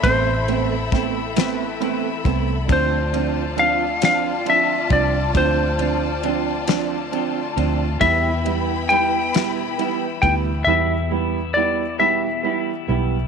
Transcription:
Already playing: A4 E5 B5
0.03 A1 A2 E3 A3 B3 C4 E4 C5, kick, ride
0.48 A3 B3 C4 E4, ride
0.92 E3 A3 B3 C4, kick, snare, ride
0.96 E4
1.36 A2 E3 A3 B3 C4 E4, snare, ride
1.40 B4
1.80 E3 A3 B3 C4 E4, ride
2.25 C2 A3 B3 C4 E4, kick, ride
2.68 D2 D3 F3 A3 C4 D4 F4 D5 A5, kick, ride
2.72 C5
3.13 F3 A3 C4 D4 F4, ride
3.57 D3 F3 A3 C4 D4 F4 F5, ride
4.02 D3 F3 A3 C4 D4 F4 F5, snare, ride
4.46 D3 F3 A3 C4 D4 F4, ride
4.50 E5
4.90 C2 F3 C4 D4 F4 D5, kick, ride
4.94 A3
5.34 D2 D3 F3 A3 C4 D4 F4 C5, kick, ride
5.79 F3 A3 C4 D4 F4, ride
6.23 D3 F3 A3 C4 D4 F4, ride
6.68 D3 F3 A3 C4 D4 F4, snare, ride
7.12 D3 F3 A3 C4 D4 F4, ride
7.56 D2 F3 A3 C4 D4 F4, ride
8.00 E2 B2 E3 G3 B3 E4 B4 E5 G5 B5, kick, ride
8.45 G3 B3 E4, ride
8.49 E3
8.89 E3 G3 B3 E4 G5, ride
9.33 E2 B2 E3 G3 B3 E4, snare, ride
9.78 E3 G3 B3 E4, ride
10.22 D2 E3 G3 B3 E4 G5, kick, ride
10.64 E2 B2 E3 G3 B3 E4 E5
10.68 G3 B3 E4
11.10 E3 G3 B3 E4
11.54 E3 G3 B3 E4 D5
11.99 E2 B2 E3 G3 B3 E4 E5
12.43 E3 G3 B3 E4
12.88 B1 E3 G3 B3 E4

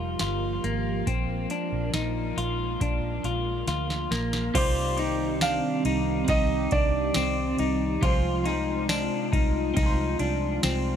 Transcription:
Already playing: F1 F3 G3 A#3 F4
0.19 G1 F4, snare, closed hi-hat
0.64 G#1 A#3, closed hi-hat
1.07 A#1 G#3 C4 F4, kick, closed hi-hat
1.50 D4, closed hi-hat
1.72 A#1
1.94 A#1 D#4, snare, closed hi-hat
2.37 A#1 F4, closed hi-hat
2.81 A#1 D4, kick, closed hi-hat
3.24 A#1 F4, closed hi-hat
3.67 D2 F4, snare, closed hi-hat
3.90 snare
4.11 A#1 A#3, snare, closed hi-hat
4.33 snare
4.54 C2 C3 D#3 G3 C4 D#4 F4 G4 C5 D5, kick, crash, ride
4.97 D#4 G4 D5, ride
5.01 C4 D#4
5.41 D4 F5, snare, ride, tambourine
5.85 C2 D#4, ride
6.25 C4 D#4, kick, ride
6.29 C2 D#4 D#5
6.34 G4
6.71 C2 D4 D5, kick, ride
7.14 C2 C4, snare, ride, tambourine
7.59 C2 D#4, ride
8.01 C2 C3 F3 G#3 C4 F4 G#4 C5, kick, ride
8.05 C5
8.44 D#4 G#4 C5, ride
8.48 C4 F4
8.89 D4, snare, ride, tambourine
9.33 C2 D#4, kick, ride
9.74 C2 C4 D#4, kick, ride
9.79 F4 G#4
9.86 C5
10.19 C2 D4, ride
10.63 C2 C4, snare, ride, tambourine

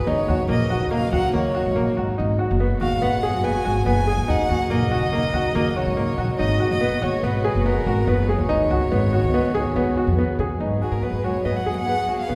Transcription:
0.07 D#2 C#3 F#3 D#4 C#5
0.28 D#2 F#4
0.48 A#1 A#3 D#5
0.70 F#4
0.81 D#2
0.91 A#3 F5
1.12 D#2 F#4 F#5
1.33 D#2 A#3 C#5
1.55 F#4
1.66 G#2
1.76 A#1 A#3
1.97 G#1 F#4
2.18 G#1 B2 G#3 D#4 F#4
2.39 F#4
2.51 F#1
2.60 B3
2.81 D#2 F#4 F5
3.02 G#1 B3 F#5
3.23 G#4
3.34 F#1
3.44 B3 G#5
3.65 G#1 F#4
3.86 F#1 B3 G#5
4.07 G#4
4.18 D#2
4.28 D#2 C#3 F#3 D#4 F#5
4.49 D#2 F#4
4.70 A#1 A#3 D#5
4.91 F#4
5.02 D#2
5.13 A#3
5.33 D#2 F#4
5.55 D#2 A#3
5.76 F#4 C#5
5.86 G#2
5.97 A#3
6.18 A#1 F#4
6.39 G#1 B2 G#3 D#4 F#4 D#5
6.60 F#4
6.71 F#1 D#5
6.81 B3
7.02 D#2 F#4 C#5
7.23 G#1 B3 B4
7.44 G#4
7.55 F#1
7.66 B3 A#4
7.86 G#1 F#4
8.07 F#1 B3 B4
8.29 G#4 C#5
8.38 D#2
8.49 C#2 D#3 B3 D#4 F#4
8.70 C#2 F#4
8.92 G#1 B3
9.13 F#4
9.23 C#2
9.34 B3
9.55 C#2 G#4
9.76 C#2 B3
9.97 F#4
10.07 F2
10.19 B3
10.39 C#3 G#4
10.59 G#2 F#3 B3 D#4 G#4
10.82 F#4 G#4
10.91 G#2 A#4
11.03 B3 B4
11.13 G#2
11.24 G#2 F#4 C#5
11.45 G#2 B3 D#5
11.56 F#5
11.66 G#2 G#4
11.77 F#5
11.87 B3
12.09 F#4
12.20 F5
12.29 B2 B3

